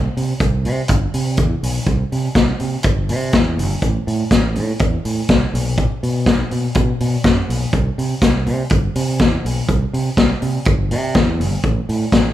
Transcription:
0.17 C3, open hi-hat
0.40 C2, kick, closed hi-hat
0.65 C3, open hi-hat
0.88 G1, kick, closed hi-hat
1.14 C3, open hi-hat
1.37 E2, kick, closed hi-hat
1.63 B1, open hi-hat
1.87 C2, kick, closed hi-hat
2.12 C3, open hi-hat
2.35 C2, kick, snare, closed hi-hat
2.60 C3, open hi-hat
2.83 G1, kick, closed hi-hat
3.09 C3, open hi-hat
3.33 E2, kick, snare, closed hi-hat
3.58 G1, open hi-hat
3.82 A1, kick, closed hi-hat
4.07 A2, open hi-hat
4.31 A1, kick, snare, closed hi-hat
4.56 A2, open hi-hat
4.79 E2, kick, closed hi-hat
5.05 A2, open hi-hat
5.29 C2, kick, snare, closed hi-hat
5.54 B1, open hi-hat
5.78 kick, closed hi-hat
6.03 B2, open hi-hat
6.26 B1, kick, snare, closed hi-hat
6.51 B2, open hi-hat
6.75 B2, kick, closed hi-hat
7.00 B2, open hi-hat
7.24 F#2, kick, snare, closed hi-hat
7.49 B1, open hi-hat
7.73 C2, kick, closed hi-hat
7.98 C3, open hi-hat
8.22 C2, kick, snare, closed hi-hat
8.46 C3, open hi-hat
8.70 G1, kick, closed hi-hat
8.95 C3, open hi-hat
9.19 E2, kick, snare, closed hi-hat
9.45 B1, open hi-hat
9.69 C2, kick, closed hi-hat
9.93 C3, open hi-hat
10.17 C2, kick, snare, closed hi-hat
10.42 C3, open hi-hat
10.65 G1, kick, closed hi-hat
10.91 C3, open hi-hat
11.15 E2, kick, snare, closed hi-hat
11.40 G1, open hi-hat
11.64 A1, kick, closed hi-hat
11.89 A2, open hi-hat
12.12 A1, kick, snare, closed hi-hat

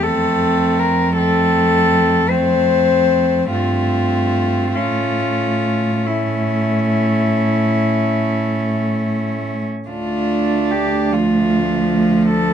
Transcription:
0.03 F2 A3 C4 A4
0.79 A#4
1.17 A3 C4 A4
2.30 A3 C4 C5
3.50 G2 A3 C4 F4
4.75 A2 A3 C#4 F4
6.03 A3 C#4 E4
9.89 D2 A3 D4 F4
10.71 G4
11.11 F3 A3 F4
12.31 A3 A4

